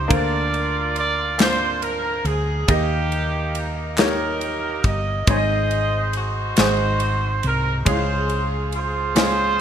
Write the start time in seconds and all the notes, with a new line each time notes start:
Already playing: A#3 D#4 G4 A#4 C5 D#5
0.08 D2 D3 A#3 D4 F4 A#4 C5, kick, ride
0.13 F4 A#4 D5
0.17 D5
0.54 ride
0.96 D5, ride
1.38 A#3 D4 F4 A#4 C5, snare, clap, ride
1.82 A#4, ride
2.25 D2 G#4, ride
2.68 D#2 D#3 A#3 D#4 G4 A#4 D#5, kick, ride
3.12 ride
3.55 ride
3.97 A#3 D#4 G4 A#4 C#5, snare, clap, ride
4.41 ride
4.84 G1 D#5, kick, ride
5.27 G#1 G#2 C4 D#4 G#4 C5 C#5 D#5, kick, ride
5.31 G#4 C5
5.37 D#5
5.71 ride
6.13 C5, ride
6.17 D#4 F#4
6.56 G#1 G#2 C4 D#4 F#4 G#4 C5, snare, clap, ride
7.00 ride
7.43 C2, ride
7.47 A#4
7.85 C#2 C#3 G#3 C#4 E4 G#4 F5, kick, ride
7.89 F4 G#4 C5
7.94 F4
8.30 ride
8.72 F4 G#4, ride
8.77 C5
9.15 G#3 C#4 F4 G#4 C5, snare, clap, ride